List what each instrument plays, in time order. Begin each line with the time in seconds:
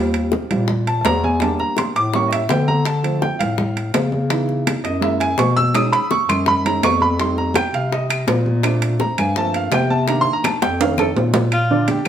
Already playing: bass clarinet D#2, grand piano G3 C4 F4
0.14 high conga, high timbale
0.32 high bongo, high conga, low timbale
0.50 bass clarinet A#2, grand piano G3 C4 F4, high conga, low conga, high timbale
0.68 high bongo, high conga, low conga
0.87 grand piano A5, high conga, high timbale
1.01 bass clarinet E2, grand piano A5, high bongo, low bongo
1.05 grand piano A#5, high conga, high timbale, low timbale
1.24 grand piano G#5, high conga
1.40 grand piano G3 A#3 D4 A5, high bongo, high conga, high timbale
1.59 grand piano A#5, high bongo, high conga
1.77 grand piano C6, high bongo, high conga, high timbale, low timbale
1.94 bass clarinet A2, grand piano D6, high bongo, high conga, high timbale
2.14 grand piano G3 A#3 C#4 C#6, high bongo, high conga
2.28 grand piano D#5, high bongo
2.32 grand piano E5, high conga, high timbale
2.49 bass clarinet D3, grand piano G5, high bongo, low bongo, high conga, high timbale, low timbale
2.68 grand piano A#5, high conga
2.85 grand piano A5, high bongo, high timbale
3.03 grand piano F3 A3 C4, high conga, high timbale
3.22 grand piano G5, high bongo, high conga, low timbale
3.39 bass clarinet A2, grand piano F5, high conga, low conga, high timbale
3.58 high bongo, high conga, low conga
3.77 high conga, high timbale
3.94 bass clarinet C#3, high bongo, low bongo, high conga, high timbale, low timbale
4.12 high conga
4.30 grand piano E3 B3 D#4, high bongo, high conga, high timbale
4.49 high bongo, high conga
4.67 high bongo, high conga, high timbale, low timbale
4.84 bass clarinet F#2, grand piano D#5, high bongo, high conga, high timbale
5.01 grand piano G#3 A#3 E4 E5, high bongo, high conga
5.20 grand piano G#5, high bongo, high conga, high timbale
5.38 bass clarinet B2, grand piano C#6, high bongo, low bongo, high conga, high timbale, low timbale
5.57 grand piano E6, high conga
5.74 grand piano G#3 C#4 D#4 D#6, high bongo, high conga, high timbale, claves
5.92 grand piano B5, high conga, high timbale
6.11 grand piano C#6, high bongo, high conga, low timbale
6.28 bass clarinet F#2, grand piano C6, high conga, low conga, high timbale, claves
6.46 grand piano B5, high bongo, high conga, low conga
6.65 grand piano G#3 C#4 D#4 A#5, high conga, high timbale
6.83 bass clarinet F2, grand piano C#6, high bongo, low bongo, high conga, high timbale, low timbale, claves
7.01 grand piano B5, high conga
7.19 grand piano G3 A3 D#4 C6, high bongo, high conga, high timbale
7.38 grand piano A#5, high bongo, high conga
7.54 grand piano G5, high bongo, high conga, high timbale, low timbale, claves
7.73 bass clarinet C3, grand piano F5, high bongo, high conga, high timbale
7.91 grand piano D#5, high bongo, high conga
8.09 high bongo, high conga, high timbale, claves
8.27 bass clarinet A#2, high bongo, low bongo, high conga, high timbale, low timbale
8.46 high conga
8.63 grand piano A3 C4 D4, high bongo, high timbale, claves
8.82 high conga, high timbale
9.00 grand piano A#5, high bongo, high conga, low timbale
9.17 bass clarinet G2, grand piano G#5, high conga, low conga, high timbale, claves
9.36 grand piano F3 A3 A#3 C4 A5, high bongo, high conga
9.54 grand piano F5, high conga, high timbale
9.71 bass clarinet C3, grand piano G5, high bongo, low bongo, high conga, high timbale, low timbale, claves
9.90 grand piano A5, high conga
10.08 grand piano D#3 A#3 D4 A#5, high bongo, high timbale
10.21 grand piano C6
10.27 high bongo, high conga
10.33 grand piano A#5
10.44 grand piano A5, high bongo, high conga, high timbale, low timbale, claves
10.61 bass clarinet F2, grand piano G5, high bongo, high conga, high timbale
10.80 grand piano D#3 A3 C#4 F5, high conga, high timbale
10.98 grand piano A4, low bongo, high conga, high timbale, claves
11.15 bass clarinet A#2, high conga, low timbale
11.34 low bongo, high conga, low timbale
11.52 alto saxophone F4, high conga, high timbale, claves
11.70 grand piano D3 D4 D5, high conga
11.88 alto saxophone G4, high conga, high timbale
12.05 claves